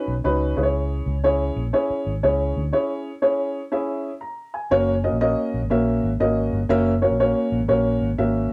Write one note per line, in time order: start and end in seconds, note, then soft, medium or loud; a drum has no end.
0.00 0.12 C#4 medium
0.00 0.12 D#4 medium
0.00 0.12 F#4 medium
0.00 0.12 B4 loud
0.08 0.23 B1 medium
0.24 0.53 C#2 medium
0.24 0.55 C#4 medium
0.24 0.57 D#4 medium
0.24 0.57 F#4 medium
0.24 0.55 B4 loud
0.57 1.01 C#2 medium
0.57 1.13 C#4 medium
0.57 1.13 E4 medium
0.57 1.14 G#4 medium
0.57 0.61 B4 medium
0.63 1.17 C#5 medium
1.06 1.50 C#2 medium
1.24 1.61 C#4 medium
1.24 1.61 E4 medium
1.24 1.62 G#4 medium
1.24 1.62 C#5 loud
1.56 1.71 A#1 medium
1.73 2.11 C#4 medium
1.73 2.11 E4 medium
1.73 2.11 G#4 medium
1.73 2.11 C#5 medium
1.90 muted fingered electric bass stroke soft
2.07 2.21 G#1 medium
2.23 2.52 C#2 medium
2.23 2.61 C#4 medium
2.23 2.61 E4 medium
2.23 2.61 G#4 medium
2.23 2.61 C#5 medium
2.57 2.71 D2 medium
2.73 3.10 C#4 medium
2.73 3.10 E4 medium
2.73 3.10 G#4 medium
2.73 3.11 C#5 loud
3.22 3.60 C#4 medium
3.22 3.60 E4 medium
3.22 3.60 G#4 medium
3.22 3.60 C#5 medium
3.72 4.09 C#4 medium
3.72 4.10 E4 medium
3.72 4.10 G#4 medium
3.72 4.10 E5 medium
4.21 4.52 A#5 medium
4.54 5.01 G#5 medium
4.71 5.07 F#1 loud
4.71 4.92 A#3 loud
4.71 4.92 C#4 medium
4.71 4.93 F#4 medium
4.71 4.93 A#4 medium
4.71 4.93 C#5 loud
5.04 5.15 A#3 medium
5.04 5.15 C#4 medium
5.04 5.15 F#4 medium
5.04 5.15 A#4 medium
5.04 5.15 D#5 medium
5.13 5.34 A#1 medium
5.21 5.59 A#3 medium
5.21 5.59 C#4 medium
5.21 5.59 F#4 medium
5.21 5.59 A#4 medium
5.21 5.59 D#5 loud
5.54 5.61 A#1 medium
5.62 5.70 G#1 medium
5.70 5.99 A#1 medium
5.70 6.08 A#3 medium
5.70 6.08 C#4 medium
5.70 6.08 F#4 medium
5.70 6.08 A#4 medium
5.70 6.08 E5 loud
6.04 6.19 G#1 loud
6.20 6.49 G#1 medium
6.20 6.58 A#3 medium
6.20 6.58 C#4 medium
6.20 6.58 F#4 medium
6.20 6.58 A#4 medium
6.20 6.58 D#5 loud
6.53 6.68 G1 medium
6.69 7.06 F#1 loud
6.69 6.91 A#3 loud
6.69 6.91 C#4 loud
6.69 6.91 F#4 loud
6.69 6.91 A#4 loud
6.69 6.91 E5 loud
7.02 7.13 A#3 medium
7.02 7.13 C#4 medium
7.02 7.13 F#4 medium
7.02 7.14 A#4 medium
7.02 7.14 C#5 medium
7.11 7.33 A#1 medium
7.20 7.57 A#3 medium
7.20 7.57 C#4 medium
7.20 7.57 F#4 medium
7.20 7.57 A#4 medium
7.20 7.58 C#5 loud
7.52 7.60 A#1 medium
7.61 7.68 G#1 medium
7.68 7.98 A#1 loud
7.68 8.06 A#3 medium
7.68 8.07 C#4 medium
7.68 8.07 F#4 medium
7.68 8.07 A#4 medium
7.68 8.07 C#5 loud
8.02 8.17 G#1 medium
8.18 8.47 G#1 medium
8.18 8.53 A#3 medium
8.18 8.53 C#4 medium
8.18 8.53 F#4 medium
8.18 8.53 A#4 medium
8.18 8.53 E5 loud